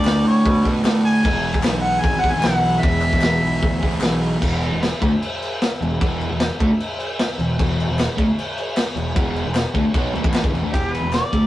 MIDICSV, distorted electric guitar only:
0, 0, Header, 1, 2, 480
1, 0, Start_track
1, 0, Tempo, 395257
1, 1518, Time_signature, 4, 2, 24, 8
1, 13927, End_track
2, 0, Start_track
2, 0, Title_t, "Distorted electric guitar"
2, 0, Program_c, 0, 30
2, 0, Note_on_c, 0, 50, 96
2, 0, Note_on_c, 0, 57, 96
2, 0, Note_on_c, 0, 62, 93
2, 749, Note_off_c, 0, 62, 0
2, 763, Note_on_c, 0, 62, 84
2, 767, Note_off_c, 0, 50, 0
2, 774, Note_off_c, 0, 57, 0
2, 789, Note_on_c, 0, 57, 84
2, 813, Note_on_c, 0, 50, 76
2, 982, Note_off_c, 0, 50, 0
2, 997, Note_on_c, 0, 50, 81
2, 1006, Note_off_c, 0, 62, 0
2, 1014, Note_off_c, 0, 57, 0
2, 1028, Note_on_c, 0, 57, 85
2, 1047, Note_on_c, 0, 62, 84
2, 1484, Note_off_c, 0, 50, 0
2, 1484, Note_on_c, 0, 40, 99
2, 1500, Note_off_c, 0, 57, 0
2, 1509, Note_off_c, 0, 62, 0
2, 1514, Note_on_c, 0, 47, 89
2, 1535, Note_on_c, 0, 52, 99
2, 2696, Note_off_c, 0, 52, 0
2, 2701, Note_on_c, 0, 52, 89
2, 2705, Note_off_c, 0, 47, 0
2, 2725, Note_on_c, 0, 47, 73
2, 2745, Note_off_c, 0, 40, 0
2, 2750, Note_on_c, 0, 40, 76
2, 2931, Note_off_c, 0, 40, 0
2, 2936, Note_on_c, 0, 40, 74
2, 2947, Note_off_c, 0, 47, 0
2, 2962, Note_on_c, 0, 47, 90
2, 2983, Note_off_c, 0, 52, 0
2, 2988, Note_on_c, 0, 52, 87
2, 3411, Note_off_c, 0, 40, 0
2, 3416, Note_on_c, 0, 40, 91
2, 3429, Note_off_c, 0, 47, 0
2, 3445, Note_on_c, 0, 47, 104
2, 3462, Note_off_c, 0, 52, 0
2, 3467, Note_on_c, 0, 52, 102
2, 4597, Note_off_c, 0, 52, 0
2, 4611, Note_on_c, 0, 52, 97
2, 4619, Note_off_c, 0, 40, 0
2, 4631, Note_off_c, 0, 47, 0
2, 4646, Note_on_c, 0, 47, 80
2, 4669, Note_on_c, 0, 40, 74
2, 4842, Note_off_c, 0, 40, 0
2, 4856, Note_off_c, 0, 52, 0
2, 4856, Note_on_c, 0, 40, 80
2, 4873, Note_off_c, 0, 47, 0
2, 4887, Note_on_c, 0, 47, 84
2, 4907, Note_on_c, 0, 52, 88
2, 5339, Note_off_c, 0, 40, 0
2, 5346, Note_off_c, 0, 47, 0
2, 5351, Note_off_c, 0, 52, 0
2, 5354, Note_on_c, 0, 40, 93
2, 5361, Note_on_c, 0, 47, 90
2, 5366, Note_on_c, 0, 52, 95
2, 5708, Note_off_c, 0, 40, 0
2, 5715, Note_off_c, 0, 47, 0
2, 5721, Note_off_c, 0, 52, 0
2, 5723, Note_on_c, 0, 40, 60
2, 5729, Note_on_c, 0, 47, 72
2, 5919, Note_off_c, 0, 40, 0
2, 5922, Note_off_c, 0, 47, 0
2, 6071, Note_on_c, 0, 50, 91
2, 6087, Note_on_c, 0, 57, 96
2, 6194, Note_off_c, 0, 50, 0
2, 6202, Note_off_c, 0, 57, 0
2, 7052, Note_on_c, 0, 40, 65
2, 7056, Note_on_c, 0, 47, 72
2, 7245, Note_off_c, 0, 40, 0
2, 7246, Note_off_c, 0, 47, 0
2, 7277, Note_on_c, 0, 40, 92
2, 7292, Note_on_c, 0, 47, 103
2, 7304, Note_on_c, 0, 52, 112
2, 7634, Note_off_c, 0, 40, 0
2, 7641, Note_off_c, 0, 47, 0
2, 7649, Note_on_c, 0, 40, 66
2, 7652, Note_off_c, 0, 52, 0
2, 7656, Note_on_c, 0, 47, 67
2, 7843, Note_off_c, 0, 40, 0
2, 7847, Note_off_c, 0, 47, 0
2, 8003, Note_on_c, 0, 50, 81
2, 8016, Note_on_c, 0, 57, 103
2, 8121, Note_off_c, 0, 50, 0
2, 8128, Note_off_c, 0, 57, 0
2, 8972, Note_on_c, 0, 40, 64
2, 8979, Note_on_c, 0, 47, 72
2, 9164, Note_off_c, 0, 40, 0
2, 9167, Note_off_c, 0, 47, 0
2, 9203, Note_on_c, 0, 40, 85
2, 9210, Note_on_c, 0, 47, 91
2, 9219, Note_on_c, 0, 52, 111
2, 9556, Note_off_c, 0, 40, 0
2, 9563, Note_off_c, 0, 47, 0
2, 9568, Note_off_c, 0, 52, 0
2, 9571, Note_on_c, 0, 40, 74
2, 9578, Note_on_c, 0, 47, 62
2, 9763, Note_off_c, 0, 40, 0
2, 9766, Note_off_c, 0, 47, 0
2, 9909, Note_on_c, 0, 50, 88
2, 9918, Note_on_c, 0, 57, 95
2, 10032, Note_off_c, 0, 50, 0
2, 10037, Note_off_c, 0, 57, 0
2, 10876, Note_on_c, 0, 40, 67
2, 10878, Note_on_c, 0, 47, 71
2, 11073, Note_off_c, 0, 40, 0
2, 11074, Note_off_c, 0, 47, 0
2, 11111, Note_on_c, 0, 40, 103
2, 11127, Note_on_c, 0, 47, 106
2, 11130, Note_on_c, 0, 52, 102
2, 11470, Note_off_c, 0, 40, 0
2, 11478, Note_off_c, 0, 47, 0
2, 11479, Note_off_c, 0, 52, 0
2, 11483, Note_on_c, 0, 40, 67
2, 11491, Note_on_c, 0, 47, 73
2, 11675, Note_off_c, 0, 40, 0
2, 11679, Note_off_c, 0, 47, 0
2, 11828, Note_on_c, 0, 50, 89
2, 11839, Note_on_c, 0, 57, 94
2, 11948, Note_off_c, 0, 50, 0
2, 11954, Note_off_c, 0, 57, 0
2, 12065, Note_on_c, 0, 47, 97
2, 12076, Note_on_c, 0, 54, 103
2, 12082, Note_on_c, 0, 59, 115
2, 12302, Note_off_c, 0, 47, 0
2, 12307, Note_on_c, 0, 50, 83
2, 12311, Note_off_c, 0, 54, 0
2, 12314, Note_off_c, 0, 59, 0
2, 12323, Note_on_c, 0, 57, 103
2, 12415, Note_off_c, 0, 50, 0
2, 12419, Note_on_c, 0, 45, 78
2, 12423, Note_off_c, 0, 57, 0
2, 12428, Note_on_c, 0, 52, 89
2, 12440, Note_on_c, 0, 57, 85
2, 12656, Note_on_c, 0, 43, 91
2, 12662, Note_off_c, 0, 45, 0
2, 12666, Note_off_c, 0, 52, 0
2, 12672, Note_off_c, 0, 57, 0
2, 12676, Note_on_c, 0, 50, 106
2, 12772, Note_off_c, 0, 43, 0
2, 12777, Note_on_c, 0, 40, 92
2, 12788, Note_off_c, 0, 50, 0
2, 12792, Note_on_c, 0, 47, 107
2, 12899, Note_off_c, 0, 47, 0
2, 12900, Note_off_c, 0, 40, 0
2, 12904, Note_on_c, 0, 50, 93
2, 12917, Note_on_c, 0, 57, 94
2, 13009, Note_on_c, 0, 40, 81
2, 13016, Note_off_c, 0, 50, 0
2, 13021, Note_off_c, 0, 57, 0
2, 13021, Note_on_c, 0, 47, 92
2, 13026, Note_on_c, 0, 52, 110
2, 13375, Note_off_c, 0, 40, 0
2, 13381, Note_off_c, 0, 47, 0
2, 13383, Note_off_c, 0, 52, 0
2, 13388, Note_on_c, 0, 40, 61
2, 13394, Note_on_c, 0, 47, 68
2, 13584, Note_off_c, 0, 40, 0
2, 13587, Note_off_c, 0, 47, 0
2, 13749, Note_on_c, 0, 50, 82
2, 13761, Note_on_c, 0, 57, 92
2, 13864, Note_off_c, 0, 50, 0
2, 13871, Note_off_c, 0, 57, 0
2, 13927, End_track
0, 0, End_of_file